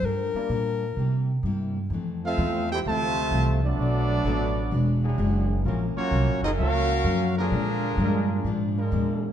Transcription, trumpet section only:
0, 0, Header, 1, 2, 480
1, 0, Start_track
1, 0, Tempo, 467290
1, 41, Time_signature, 4, 2, 24, 8
1, 9581, End_track
2, 0, Start_track
2, 0, Title_t, "Trumpet section"
2, 0, Program_c, 0, 61
2, 2324, Note_on_c, 0, 76, 91
2, 2329, Note_on_c, 0, 69, 96
2, 2331, Note_on_c, 0, 77, 112
2, 2332, Note_on_c, 0, 60, 95
2, 2750, Note_off_c, 0, 76, 0
2, 2752, Note_off_c, 0, 69, 0
2, 2753, Note_off_c, 0, 77, 0
2, 2754, Note_off_c, 0, 60, 0
2, 2796, Note_on_c, 0, 79, 104
2, 2804, Note_on_c, 0, 72, 85
2, 2805, Note_on_c, 0, 69, 97
2, 2806, Note_on_c, 0, 64, 97
2, 2862, Note_off_c, 0, 79, 0
2, 2868, Note_off_c, 0, 72, 0
2, 2869, Note_off_c, 0, 69, 0
2, 2870, Note_off_c, 0, 64, 0
2, 2952, Note_on_c, 0, 72, 104
2, 2957, Note_on_c, 0, 65, 112
2, 2961, Note_on_c, 0, 76, 111
2, 2961, Note_on_c, 0, 81, 125
2, 3692, Note_off_c, 0, 72, 0
2, 3695, Note_off_c, 0, 65, 0
2, 3696, Note_off_c, 0, 81, 0
2, 3697, Note_off_c, 0, 76, 0
2, 3754, Note_on_c, 0, 74, 99
2, 3755, Note_on_c, 0, 69, 86
2, 3758, Note_on_c, 0, 59, 91
2, 3759, Note_on_c, 0, 66, 90
2, 4821, Note_off_c, 0, 69, 0
2, 5136, Note_off_c, 0, 74, 0
2, 5138, Note_off_c, 0, 59, 0
2, 5138, Note_off_c, 0, 66, 0
2, 6124, Note_on_c, 0, 65, 90
2, 6126, Note_on_c, 0, 66, 94
2, 6131, Note_on_c, 0, 58, 94
2, 6132, Note_on_c, 0, 73, 107
2, 6568, Note_off_c, 0, 65, 0
2, 6569, Note_off_c, 0, 66, 0
2, 6572, Note_off_c, 0, 58, 0
2, 6572, Note_off_c, 0, 73, 0
2, 6607, Note_on_c, 0, 65, 98
2, 6607, Note_on_c, 0, 68, 93
2, 6608, Note_on_c, 0, 75, 106
2, 6610, Note_on_c, 0, 60, 97
2, 6679, Note_off_c, 0, 65, 0
2, 6679, Note_off_c, 0, 68, 0
2, 6680, Note_off_c, 0, 75, 0
2, 6682, Note_off_c, 0, 60, 0
2, 6771, Note_on_c, 0, 66, 109
2, 6773, Note_on_c, 0, 70, 113
2, 6774, Note_on_c, 0, 61, 105
2, 6774, Note_on_c, 0, 77, 127
2, 7521, Note_off_c, 0, 66, 0
2, 7522, Note_off_c, 0, 70, 0
2, 7523, Note_off_c, 0, 61, 0
2, 7523, Note_off_c, 0, 77, 0
2, 7575, Note_on_c, 0, 70, 105
2, 7578, Note_on_c, 0, 62, 88
2, 7584, Note_on_c, 0, 65, 91
2, 7586, Note_on_c, 0, 68, 92
2, 8965, Note_off_c, 0, 70, 0
2, 8967, Note_off_c, 0, 62, 0
2, 8970, Note_off_c, 0, 65, 0
2, 8971, Note_off_c, 0, 68, 0
2, 9581, End_track
0, 0, End_of_file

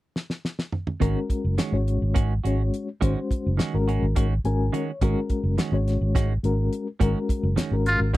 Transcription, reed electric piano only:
0, 0, Header, 1, 2, 480
1, 0, Start_track
1, 0, Tempo, 570885
1, 858, Time_signature, 7, 3, 24, 8
1, 6869, End_track
2, 0, Start_track
2, 0, Title_t, "Reed electric piano"
2, 0, Program_c, 0, 4
2, 844, Note_on_c, 0, 56, 69
2, 845, Note_on_c, 0, 61, 69
2, 852, Note_on_c, 0, 66, 66
2, 857, Note_on_c, 0, 70, 78
2, 1292, Note_off_c, 0, 56, 0
2, 1293, Note_off_c, 0, 61, 0
2, 1296, Note_off_c, 0, 66, 0
2, 1299, Note_off_c, 0, 70, 0
2, 1445, Note_on_c, 0, 56, 72
2, 1455, Note_on_c, 0, 61, 61
2, 1459, Note_on_c, 0, 66, 68
2, 1459, Note_on_c, 0, 73, 76
2, 1893, Note_off_c, 0, 56, 0
2, 1898, Note_off_c, 0, 61, 0
2, 1900, Note_off_c, 0, 66, 0
2, 1900, Note_off_c, 0, 73, 0
2, 2064, Note_on_c, 0, 56, 64
2, 2065, Note_on_c, 0, 61, 59
2, 2073, Note_on_c, 0, 66, 68
2, 2077, Note_on_c, 0, 73, 71
2, 2414, Note_off_c, 0, 56, 0
2, 2415, Note_off_c, 0, 61, 0
2, 2418, Note_off_c, 0, 66, 0
2, 2420, Note_off_c, 0, 73, 0
2, 2541, Note_on_c, 0, 61, 68
2, 2542, Note_on_c, 0, 56, 64
2, 2552, Note_on_c, 0, 66, 73
2, 2552, Note_on_c, 0, 72, 74
2, 2981, Note_off_c, 0, 56, 0
2, 2981, Note_off_c, 0, 61, 0
2, 2986, Note_off_c, 0, 66, 0
2, 2986, Note_off_c, 0, 72, 0
2, 3140, Note_on_c, 0, 56, 72
2, 3143, Note_on_c, 0, 61, 69
2, 3148, Note_on_c, 0, 66, 65
2, 3151, Note_on_c, 0, 70, 90
2, 3580, Note_off_c, 0, 56, 0
2, 3582, Note_off_c, 0, 61, 0
2, 3584, Note_off_c, 0, 66, 0
2, 3585, Note_off_c, 0, 70, 0
2, 3743, Note_on_c, 0, 56, 75
2, 3744, Note_on_c, 0, 66, 61
2, 3745, Note_on_c, 0, 61, 73
2, 3745, Note_on_c, 0, 80, 59
2, 3756, Note_on_c, 0, 70, 76
2, 3964, Note_off_c, 0, 80, 0
2, 3986, Note_on_c, 0, 73, 58
2, 4093, Note_off_c, 0, 56, 0
2, 4094, Note_off_c, 0, 61, 0
2, 4094, Note_off_c, 0, 66, 0
2, 4099, Note_off_c, 0, 70, 0
2, 4205, Note_off_c, 0, 73, 0
2, 4223, Note_on_c, 0, 61, 75
2, 4224, Note_on_c, 0, 56, 82
2, 4229, Note_on_c, 0, 66, 65
2, 4236, Note_on_c, 0, 70, 89
2, 4661, Note_off_c, 0, 56, 0
2, 4661, Note_off_c, 0, 61, 0
2, 4664, Note_off_c, 0, 66, 0
2, 4668, Note_off_c, 0, 70, 0
2, 4812, Note_on_c, 0, 61, 64
2, 4813, Note_on_c, 0, 56, 74
2, 4818, Note_on_c, 0, 66, 70
2, 4827, Note_on_c, 0, 73, 83
2, 5255, Note_off_c, 0, 56, 0
2, 5255, Note_off_c, 0, 61, 0
2, 5258, Note_off_c, 0, 66, 0
2, 5262, Note_off_c, 0, 73, 0
2, 5411, Note_on_c, 0, 56, 76
2, 5417, Note_on_c, 0, 61, 63
2, 5422, Note_on_c, 0, 66, 61
2, 5426, Note_on_c, 0, 70, 82
2, 5766, Note_off_c, 0, 56, 0
2, 5769, Note_off_c, 0, 61, 0
2, 5772, Note_off_c, 0, 66, 0
2, 5774, Note_off_c, 0, 70, 0
2, 5895, Note_on_c, 0, 56, 80
2, 5899, Note_on_c, 0, 61, 65
2, 5900, Note_on_c, 0, 66, 67
2, 5908, Note_on_c, 0, 70, 83
2, 6336, Note_off_c, 0, 56, 0
2, 6338, Note_off_c, 0, 61, 0
2, 6338, Note_off_c, 0, 66, 0
2, 6343, Note_off_c, 0, 70, 0
2, 6492, Note_on_c, 0, 56, 73
2, 6494, Note_on_c, 0, 61, 68
2, 6496, Note_on_c, 0, 66, 62
2, 6504, Note_on_c, 0, 70, 81
2, 6869, Note_off_c, 0, 56, 0
2, 6869, Note_off_c, 0, 61, 0
2, 6869, Note_off_c, 0, 66, 0
2, 6869, Note_off_c, 0, 70, 0
2, 6869, End_track
0, 0, End_of_file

